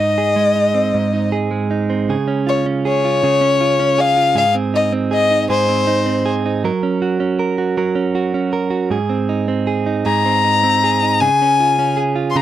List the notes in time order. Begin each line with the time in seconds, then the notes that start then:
Already playing: G#2 D#5
0.00 D#4
0.18 G#4
0.36 G#3
0.56 D#4
0.74 C4
0.94 G#2
1.13 D#4
1.32 G#4
1.51 G#3
1.71 D#4
1.90 C4
2.09 C#3 G#4
2.28 C#4
2.47 F4 C#5
2.66 C#4
2.85 G#4 C#5
3.05 F4
3.23 C#3 G#4
3.41 C#4
3.61 F4
3.80 C#4
3.98 G#4 F5
4.17 F4
4.35 G#2 G#4 F5
4.55 C4
4.74 D#4 D#5
4.92 C4
5.11 G#4 D#5
5.31 D#4
5.50 G#2 G#4 C5
5.69 C4
5.87 D#4
6.06 C4
6.26 G#4
6.46 D#4
6.64 F#3 A#4
6.83 C#4
7.02 F#4
7.20 C#4
7.39 A#4
7.58 F#4
7.77 F#3 A#4
7.95 C#4
8.15 F#4
8.34 C#4
8.53 A#4
8.70 F#4
8.90 G#2 G#4
9.09 C4
9.29 D#4
9.48 C4
9.67 G#4
9.86 D#4
10.05 G#2 G#4 A#5
10.26 C4
10.44 D#4
10.64 C4
10.84 G#4
11.02 D#4
11.20 C#3 G#4 G#5
11.42 C#4
11.60 F4
11.79 C#4
11.97 G#4
12.16 F4
12.30 C6
12.36 C#3 G#4 A#5